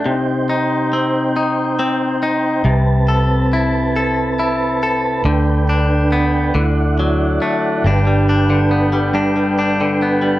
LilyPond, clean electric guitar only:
\new Staff \with { instrumentName = "Clean electric guitar" } { \time 6/8 \key g \major \tempo 4. = 46 c8 ees'8 c'8 ees'8 c'8 ees'8 | c8 a'8 e'8 a'8 e'8 a'8 | d8 d'8 b8 d8 fis8 a8 | <g, d'>16 g16 d'16 d16 b16 g16 <g, d'>16 g16 d'16 d16 b16 g16 | }